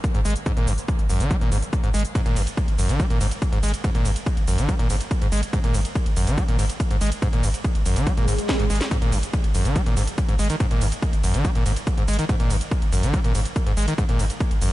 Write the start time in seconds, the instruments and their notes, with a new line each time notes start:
0.04 kick, closed hi-hat, shaker
0.15 sub bass G#1, acid bass G#2, closed hi-hat
0.25 sub bass G#1, acid bass G#3, open hi-hat, shaker
0.30 closed hi-hat
0.36 closed hi-hat, shaker
0.46 acid bass G#2, kick, closed hi-hat, shaker
0.57 sub bass G#1, acid bass A#2, closed hi-hat
0.67 sub bass G#1, acid bass F#2, open hi-hat, shaker
0.78 closed hi-hat, shaker
0.88 kick, closed hi-hat, shaker
0.99 sub bass G#1, closed hi-hat
1.10 sub bass G#1, acid bass F#2, open hi-hat, shaker
1.20 sub bass G#1, acid bass D#3, closed hi-hat, shaker
1.31 acid bass G#3, kick, closed hi-hat, shaker
1.41 sub bass G#1, acid bass A#2, closed hi-hat
1.52 sub bass G#1, acid bass G#2, open hi-hat, shaker
1.62 closed hi-hat, shaker
1.73 kick, closed hi-hat, shaker
1.84 sub bass G#1, acid bass G#2, closed hi-hat
1.94 sub bass G#1, acid bass G#3, open hi-hat, shaker
1.99 closed hi-hat
2.05 closed hi-hat, shaker
2.15 acid bass G#2, kick, closed hi-hat, ride, shaker
2.26 sub bass G#1, acid bass A#2, closed hi-hat, ride
2.36 sub bass G#1, acid bass F#2, open hi-hat, ride, shaker
2.47 closed hi-hat, ride, shaker
2.57 kick, closed hi-hat, ride, shaker
2.68 sub bass G#1, closed hi-hat, ride
2.79 sub bass G#1, acid bass F#2, open hi-hat, ride, shaker
2.89 sub bass G#1, acid bass D#3, closed hi-hat, ride, shaker
3.00 acid bass G#3, kick, closed hi-hat, ride, shaker
3.10 sub bass G#1, acid bass A#2, closed hi-hat, ride
3.21 sub bass G#1, acid bass G#2, open hi-hat, ride, shaker
3.31 closed hi-hat, ride, shaker
3.42 kick, closed hi-hat, ride, shaker
3.53 sub bass G#1, acid bass G#2, closed hi-hat, ride
3.63 sub bass G#1, acid bass G#3, open hi-hat, ride, shaker
3.68 closed hi-hat
3.74 closed hi-hat, ride, shaker
3.84 acid bass G#2, kick, closed hi-hat, ride, shaker
3.95 sub bass G#1, acid bass A#2, closed hi-hat, ride
4.05 sub bass G#1, acid bass F#2, open hi-hat, ride, shaker
4.16 closed hi-hat, ride, shaker
4.26 kick, closed hi-hat, ride, shaker
4.37 sub bass G#1, closed hi-hat, ride
4.48 sub bass G#1, acid bass F#2, open hi-hat, ride, shaker
4.58 sub bass G#1, acid bass D#3, closed hi-hat, ride, shaker
4.69 acid bass G#3, kick, closed hi-hat, ride, shaker
4.79 sub bass G#1, acid bass A#2, closed hi-hat, ride
4.90 sub bass G#1, acid bass G#2, open hi-hat, ride, shaker
5.01 closed hi-hat, ride, shaker
5.11 kick, closed hi-hat, ride, shaker
5.22 sub bass G#1, acid bass G#2, closed hi-hat, ride
5.32 sub bass G#1, acid bass G#3, open hi-hat, ride, shaker
5.37 closed hi-hat
5.43 closed hi-hat, ride, shaker
5.53 acid bass G#2, kick, closed hi-hat, ride, shaker
5.64 sub bass G#1, acid bass A#2, closed hi-hat, ride
5.74 sub bass G#1, acid bass F#2, open hi-hat, ride, shaker
5.85 closed hi-hat, ride, shaker
5.95 kick, closed hi-hat, ride, shaker
6.06 sub bass G#1, closed hi-hat, ride
6.17 sub bass G#1, acid bass F#2, open hi-hat, ride, shaker
6.27 sub bass G#1, acid bass D#3, closed hi-hat, ride, shaker
6.38 acid bass G#3, kick, closed hi-hat, ride, shaker
6.48 sub bass G#1, acid bass A#2, closed hi-hat, ride
6.59 sub bass G#1, acid bass G#2, open hi-hat, ride, shaker
6.70 closed hi-hat, ride, shaker
6.80 kick, closed hi-hat, ride, shaker
6.91 sub bass G#1, acid bass G#2, closed hi-hat, ride
7.01 sub bass G#1, acid bass G#3, open hi-hat, ride, shaker
7.06 closed hi-hat
7.12 closed hi-hat, ride, shaker
7.22 acid bass G#2, kick, closed hi-hat, ride, shaker
7.33 sub bass G#1, acid bass A#2, closed hi-hat, ride
7.43 sub bass G#1, acid bass F#2, open hi-hat, ride, shaker
7.54 closed hi-hat, ride, shaker
7.64 kick, closed hi-hat, ride, shaker
7.75 sub bass G#1, closed hi-hat, ride
7.86 sub bass G#1, acid bass F#2, open hi-hat, ride, shaker
7.96 sub bass G#1, acid bass D#3, closed hi-hat, ride, shaker
8.07 acid bass G#3, kick, closed hi-hat, ride, swell, shaker
8.17 sub bass G#1, acid bass A#2, closed hi-hat, ride
8.28 sub bass G#1, acid bass G#2, open hi-hat, ride, shaker
8.38 closed hi-hat, ride, shaker
8.49 kick, snare, closed hi-hat, ride, shaker
8.60 sub bass G#1, acid bass G#2, closed hi-hat, ride
8.70 sub bass G#1, acid bass G#3, open hi-hat, ride, shaker
8.75 closed hi-hat
8.81 snare, closed hi-hat, ride, shaker
8.91 acid bass G#2, kick, closed hi-hat, ride, shaker
9.02 sub bass G#1, acid bass A#2, closed hi-hat, ride
9.12 sub bass G#1, acid bass F#2, open hi-hat, ride, shaker
9.23 closed hi-hat, ride, shaker
9.33 kick, closed hi-hat, ride, shaker
9.44 sub bass G#1, closed hi-hat, ride
9.55 sub bass G#1, acid bass F#2, open hi-hat, ride, shaker
9.65 sub bass G#1, acid bass D#3, closed hi-hat, ride, shaker
9.76 acid bass G#3, kick, closed hi-hat, ride, shaker
9.86 sub bass G#1, acid bass A#2, closed hi-hat, ride
9.97 sub bass G#1, acid bass G#2, open hi-hat, ride, shaker
10.07 closed hi-hat, ride, shaker
10.18 kick, closed hi-hat, ride, shaker
10.29 sub bass G#1, acid bass G#2, closed hi-hat, ride
10.39 sub bass G#1, acid bass G#3, open hi-hat, ride, shaker
10.44 closed hi-hat
10.50 acid bass D#3, closed hi-hat, ride, shaker
10.60 acid bass G#2, kick, closed hi-hat, ride, shaker
10.71 sub bass G#1, acid bass A#2, closed hi-hat, ride
10.81 sub bass G#1, acid bass F#2, open hi-hat, ride, shaker
10.92 closed hi-hat, ride, shaker
11.02 kick, closed hi-hat, ride, shaker
11.13 sub bass G#1, closed hi-hat, ride
11.24 sub bass G#1, acid bass F#2, open hi-hat, ride, shaker
11.34 sub bass G#1, acid bass D#3, closed hi-hat, ride, shaker
11.45 acid bass G#3, kick, closed hi-hat, ride, shaker
11.55 sub bass G#1, acid bass A#2, closed hi-hat, ride
11.66 sub bass G#1, acid bass G#2, open hi-hat, ride, shaker
11.76 closed hi-hat, ride, shaker
11.87 kick, closed hi-hat, ride, shaker
11.98 sub bass G#1, acid bass G#2, closed hi-hat, ride
12.08 sub bass G#1, acid bass G#3, open hi-hat, ride, shaker
12.13 closed hi-hat
12.19 acid bass D#3, closed hi-hat, ride, shaker
12.29 acid bass G#2, kick, closed hi-hat, ride, shaker
12.40 sub bass G#1, acid bass A#2, closed hi-hat, ride
12.50 sub bass G#1, acid bass F#2, open hi-hat, ride, shaker
12.61 closed hi-hat, ride, shaker
12.71 kick, closed hi-hat, ride, shaker
12.82 sub bass G#1, closed hi-hat, ride
12.93 sub bass G#1, acid bass F#2, open hi-hat, ride, shaker
13.03 sub bass G#1, acid bass D#3, closed hi-hat, ride, shaker
13.14 acid bass G#3, kick, closed hi-hat, ride, shaker
13.24 sub bass G#1, acid bass A#2, closed hi-hat, ride
13.35 sub bass G#1, acid bass G#2, open hi-hat, ride, shaker
13.45 closed hi-hat, ride, shaker
13.56 kick, closed hi-hat, ride, shaker
13.67 sub bass G#1, acid bass G#2, closed hi-hat, ride
13.77 sub bass G#1, acid bass G#3, open hi-hat, ride, shaker
13.82 closed hi-hat
13.88 acid bass D#3, closed hi-hat, ride, shaker
13.98 acid bass G#2, kick, closed hi-hat, ride, shaker
14.09 sub bass G#1, acid bass A#2, closed hi-hat, ride
14.19 sub bass G#1, acid bass F#2, open hi-hat, ride, shaker
14.30 closed hi-hat, ride, shaker
14.40 kick, closed hi-hat, ride, shaker
14.51 sub bass G#1, closed hi-hat, ride
14.62 sub bass G#1, acid bass F#2, open hi-hat, ride, shaker